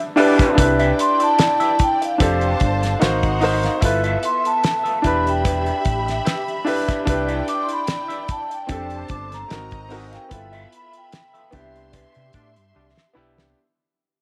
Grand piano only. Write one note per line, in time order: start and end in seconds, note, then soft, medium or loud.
0.00 0.16 D4 medium
0.00 0.16 E4 medium
0.00 0.18 G4 medium
0.00 0.19 B4 loud
0.16 0.44 D4 medium
0.16 0.45 E4 medium
0.16 0.45 G4 medium
0.16 0.46 B4 medium
0.55 1.64 D4 medium
0.55 1.65 E4 medium
0.55 1.65 G4 medium
0.55 1.66 B4 medium
2.18 2.86 D4 medium
2.18 2.86 G4 medium
2.18 2.87 A4 medium
2.18 2.87 C5 medium
2.99 3.34 D#4 medium
2.99 3.34 F#4 medium
2.99 3.35 A#4 medium
2.99 3.35 C5 loud
3.40 3.69 D#4 loud
3.40 3.70 F#4 medium
3.40 3.70 A#4 loud
3.40 3.71 C5 loud
3.81 4.89 E4 loud
3.81 4.90 F4 medium
3.81 4.91 A4 medium
3.81 4.91 B4 loud
5.02 6.34 D4 medium
5.02 6.35 E4 medium
5.02 6.35 G4 medium
5.06 6.36 B4 medium
6.65 6.93 D4 medium
6.65 6.94 E4 medium
6.65 6.95 G4 medium
6.65 6.95 B4 loud
7.05 8.14 D4 medium
7.05 8.14 E4 medium
7.05 8.15 G4 medium
7.05 8.16 B4 loud
8.67 9.35 C4 medium
8.67 9.35 D4 medium
8.67 9.36 G4 medium
8.71 9.37 A4 loud
9.48 9.83 C4 medium
9.48 9.84 D#4 medium
9.48 9.84 F#4 medium
9.48 9.85 A#4 loud
9.89 10.18 C4 medium
9.89 10.18 D#4 medium
9.89 10.19 F#4 medium
9.89 10.19 A#4 medium
10.29 11.38 B3 medium
10.29 11.39 E4 medium
10.29 11.39 F4 medium
10.33 11.40 A4 medium
11.51 12.82 B3 medium
11.51 12.83 D4 medium
11.51 12.83 E4 medium
11.51 12.84 G4 loud
13.13 13.42 B3 medium
13.13 13.43 D4 medium
13.13 13.43 E4 medium
13.13 13.44 G4 loud